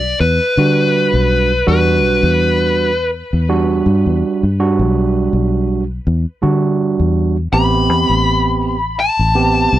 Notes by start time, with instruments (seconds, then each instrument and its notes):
Already playing: fingered electric bass B1, lead electric guitar D5
0.20 fingered electric bass E2, lead electric guitar B4
0.57 fingered electric bass D3, tine electric piano G3 D4 F#4
1.13 fingered electric bass B1
1.67 fingered electric bass E2, tine electric piano G3 D4 F#4, lead electric guitar B4
2.03 fingered electric bass B1
2.23 fingered electric bass E2
3.33 fingered electric bass E2
3.49 tine electric piano G3 D4 F#4
3.86 fingered electric bass G2
4.06 fingered electric bass E2
4.43 fingered electric bass G2
4.60 tine electric piano G3 D4 F#4
4.79 fingered electric bass B1
5.33 fingered electric bass B1
6.07 fingered electric bass E2
6.42 fingered electric bass D3, tine electric piano G3 D4 F#4
7.00 fingered electric bass E2
7.53 fingered electric bass A1, tine electric piano B3 C4 G4, lead electric guitar B5
7.89 fingered electric bass E2
8.09 fingered electric bass A1
9.00 lead electric guitar A5
9.19 fingered electric bass A1
9.35 tine electric piano B3 C4 G4
9.73 fingered electric bass C2